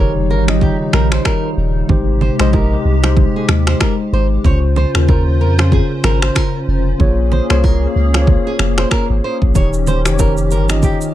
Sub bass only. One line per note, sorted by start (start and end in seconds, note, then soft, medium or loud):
0.00 0.31 F1 medium
0.29 0.70 G1 medium
0.93 1.19 A#1 loud
1.57 1.83 D#1 loud
1.89 2.30 G#1 loud
2.40 2.76 A#1 medium
2.85 3.26 C2 medium
3.49 3.75 D#2 medium
4.13 4.38 G#1 loud
4.44 4.85 C#2 loud
4.95 5.42 D#2 medium
5.40 5.81 F2 medium
6.04 6.30 G#1 loud
6.68 6.94 F1 medium
7.00 7.41 A#1 loud
7.50 7.87 C2 medium
7.96 8.36 C#2 medium
8.59 8.85 F1 medium
9.10 9.21 G#1 medium
9.42 9.53 A#1 medium
9.55 10.07 D#1 loud
10.06 10.52 F1 medium
10.51 10.92 G1 medium